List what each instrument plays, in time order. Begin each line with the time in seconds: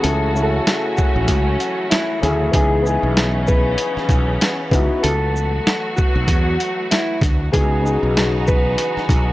Already playing: string section E3 F#3 F#4
0.01 fretless electric bass C#2, grand piano C#3 A3 C#4 E4 G#4, string section A3 C#4, clean electric guitar A4, closed hi-hat
0.33 grand piano C#3 A3 C#4 E4 F#4, shaker
0.43 grand piano A4
0.67 snare, closed hi-hat
0.97 clean electric guitar F#4, kick, shaker
1.16 fretless electric bass A1
1.28 fretless electric bass C#2, kick, closed hi-hat
1.60 closed hi-hat, shaker
1.90 clean electric guitar E4, snare, closed hi-hat
2.20 fretless electric bass D2, grand piano C#3 A3 C#4 E4 G#4, snare, closed hi-hat, shaker
2.51 fretless electric bass C#2, string section C#3 B3 C#4, grand piano B3 D#4 E4 G#4, clean electric guitar G#4, kick, closed hi-hat
2.83 grand piano B3 D#4 E4 G#4, shaker
3.03 fretless electric bass B1
3.17 snare, closed hi-hat
3.47 clean electric guitar B4, kick, shaker
3.78 closed hi-hat
3.97 muted fretless electric bass stroke, snare
4.09 fretless electric bass B1, kick, closed hi-hat, shaker
4.41 snare, closed hi-hat
4.71 fretless electric bass C#2, grand piano B3 D#4 E4 F#4, kick, closed hi-hat, shaker
5.03 fretless electric bass C#2, string section F#3 A3 F#4, clean electric guitar A4, closed hi-hat
5.36 shaker
5.67 snare, closed hi-hat
5.96 clean electric guitar F#4, kick, shaker
6.16 fretless electric bass B1
6.28 fretless electric bass E2, kick, closed hi-hat
6.60 closed hi-hat, shaker
6.91 clean electric guitar E4, snare, closed hi-hat
7.21 fretless electric bass D2, kick, snare, closed hi-hat, shaker
7.52 fretless electric bass C#2, grand piano C#3 B3 D#4 F#4 G#4, string section E3 F#3 B3 D#4 F#4, clean electric guitar G#4, kick, closed hi-hat
7.82 grand piano C#3 B3 D#4 F#4 G#4
7.86 shaker
8.03 fretless electric bass B1
8.17 snare, closed hi-hat
8.47 clean electric guitar B4, kick, shaker
8.78 closed hi-hat
8.97 muted fretless electric bass stroke, snare
9.09 fretless electric bass B1, kick, closed hi-hat, shaker